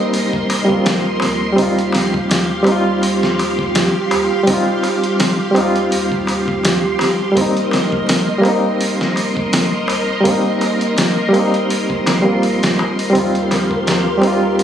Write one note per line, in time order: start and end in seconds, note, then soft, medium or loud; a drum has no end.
0.00 0.65 G3 medium
0.00 0.68 A#3 medium
0.00 0.71 C4 medium
0.00 1.59 D#4 loud
0.00 1.54 A#4 medium
0.00 1.54 D#5 medium
0.00 7.33 C6 medium
0.13 0.87 C2 loud
0.13 open hi-hat medium
0.13 darbuka tek medium
0.33 kick loud
0.33 darbuka tek soft
0.50 open hi-hat medium
0.50 darbuka tek medium
0.65 1.51 G3 medium
0.65 1.53 A#3 medium
0.69 1.55 C4 medium
0.69 kick medium
0.69 darbuka tek soft
0.74 1.56 F4 medium
0.85 1.23 A#1 medium
0.85 snare loud
0.85 open hi-hat medium
0.85 darbuka tek medium
1.20 1.54 D#2 loud
1.20 snare soft
1.20 open hi-hat medium
1.20 darbuka tek loud
1.41 darbuka tek soft
1.52 2.59 G3 medium
1.52 2.61 C4 medium
1.57 3.91 D#2 loud
1.57 2.63 D#4 medium
1.57 7.33 G4 medium
1.57 7.33 F5 medium
1.57 kick loud
1.57 open hi-hat medium
1.57 darbuka tek medium
1.62 2.65 F4 loud
1.77 closed hi-hat soft
1.77 darbuka tek soft
1.92 snare medium
1.92 open hi-hat medium
1.92 darbuka tek medium
2.13 kick medium
2.13 darbuka tek soft
2.30 snare loud
2.30 open hi-hat medium
2.30 darbuka tek medium
2.62 4.41 G3 loud
2.62 4.43 C4 medium
2.62 darbuka tek loud
2.67 4.44 D#4 medium
2.67 open hi-hat medium
2.72 4.46 F4 loud
2.85 darbuka tek soft
3.02 open hi-hat medium
3.02 darbuka tek medium
3.23 snare medium
3.39 open hi-hat medium
3.39 darbuka tek medium
3.59 kick loud
3.59 darbuka tek soft
3.75 snare loud
3.75 open hi-hat medium
3.75 darbuka tek soft
4.11 4.28 D#2 loud
4.11 open hi-hat medium
4.11 darbuka tek loud
4.31 darbuka tek soft
4.43 5.50 G3 medium
4.43 5.51 C4 medium
4.43 open hi-hat medium
4.43 darbuka tek soft
4.47 5.53 D#4 medium
4.47 kick loud
4.53 5.55 F4 loud
4.68 darbuka tek soft
4.83 open hi-hat medium
4.83 darbuka tek medium
5.02 closed hi-hat soft
5.02 darbuka tek soft
5.19 snare loud
5.19 open hi-hat medium
5.19 darbuka tek medium
5.51 7.30 G3 medium
5.51 7.32 C4 medium
5.55 5.88 D#2 medium
5.55 7.33 D#4 medium
5.55 open hi-hat medium
5.55 darbuka tek medium
5.61 7.35 F4 loud
5.75 closed hi-hat soft
5.75 darbuka tek soft
5.91 6.97 D#2 loud
5.91 open hi-hat medium
5.91 darbuka tek soft
6.12 kick loud
6.27 open hi-hat medium
6.27 darbuka tek medium
6.47 kick medium
6.47 darbuka tek soft
6.63 snare loud
6.63 open hi-hat medium
6.63 darbuka tek medium
6.99 7.32 C2 medium
6.99 snare soft
6.99 open hi-hat medium
6.99 darbuka tek loud
7.20 darbuka tek soft
7.32 8.37 G3 medium
7.32 8.40 A#3 medium
7.32 darbuka tek soft
7.37 9.69 C2 loud
7.37 8.41 C4 medium
7.37 13.11 A#4 medium
7.37 13.11 D#5 medium
7.37 14.63 C6 medium
7.37 kick loud
7.37 open hi-hat medium
7.41 8.43 D#4 loud
7.55 closed hi-hat soft
7.55 darbuka tek soft
7.71 snare medium
7.71 open hi-hat medium
7.71 darbuka tek medium
7.92 kick loud
7.92 darbuka tek soft
8.07 snare loud
8.07 open hi-hat medium
8.07 darbuka tek soft
8.39 10.18 G3 loud
8.39 10.20 A#3 loud
8.43 10.21 C4 medium
8.43 open hi-hat medium
8.43 darbuka tek medium
8.48 10.23 D#4 loud
8.64 darbuka tek soft
8.80 open hi-hat medium
8.80 darbuka tek medium
9.01 snare medium
9.16 open hi-hat medium
9.16 darbuka tek medium
9.35 kick medium
9.35 darbuka tek soft
9.53 snare loud
9.53 open hi-hat medium
9.53 darbuka tek medium
9.88 10.07 C2 loud
9.88 open hi-hat medium
9.88 darbuka tek loud
10.09 darbuka tek soft
10.21 11.27 G3 medium
10.21 11.29 A#3 medium
10.25 11.31 C4 medium
10.25 kick loud
10.25 open hi-hat medium
10.25 darbuka tek medium
10.31 11.32 D#4 loud
10.46 darbuka tek soft
10.61 open hi-hat medium
10.61 darbuka tek medium
10.81 closed hi-hat soft
10.81 darbuka tek soft
10.97 snare loud
10.97 open hi-hat medium
10.97 darbuka tek medium
11.29 12.19 G3 loud
11.29 12.21 A#3 medium
11.34 12.08 C2 medium
11.34 12.23 C4 medium
11.34 open hi-hat medium
11.34 darbuka tek medium
11.39 12.24 D#4 loud
11.54 closed hi-hat soft
11.54 darbuka tek soft
11.70 open hi-hat medium
11.70 darbuka tek soft
11.90 kick loud
11.90 darbuka tek soft
12.06 12.75 A#1 loud
12.06 snare loud
12.06 open hi-hat medium
12.06 darbuka tek medium
12.22 13.09 G3 medium
12.22 13.10 A#3 medium
12.26 13.12 C4 medium
12.26 darbuka tek soft
12.32 13.14 F4 medium
12.42 open hi-hat medium
12.42 darbuka tek soft
12.63 snare loud
12.63 open hi-hat medium
12.63 darbuka tek soft
12.79 13.11 C2 medium
12.79 darbuka tek loud
12.99 open hi-hat medium
12.99 darbuka tek soft
13.10 14.16 G3 medium
13.10 14.18 C4 medium
13.14 14.63 D#2 loud
13.14 14.20 D#4 medium
13.14 14.63 G4 medium
13.14 14.63 A#4 medium
13.14 14.63 F5 medium
13.14 kick loud
13.14 open hi-hat medium
13.14 darbuka tek medium
13.19 14.21 F4 medium
13.34 closed hi-hat soft
13.34 darbuka tek soft
13.51 snare medium
13.51 open hi-hat medium
13.51 darbuka tek medium
13.71 kick loud
13.71 darbuka tek soft
13.87 snare loud
13.87 open hi-hat medium
13.87 darbuka tek medium
14.18 14.63 G3 medium
14.18 14.63 C4 medium
14.22 14.63 D#4 medium
14.22 open hi-hat medium
14.22 darbuka tek medium
14.27 14.63 F4 loud
14.43 darbuka tek soft
14.59 open hi-hat medium
14.59 darbuka tek soft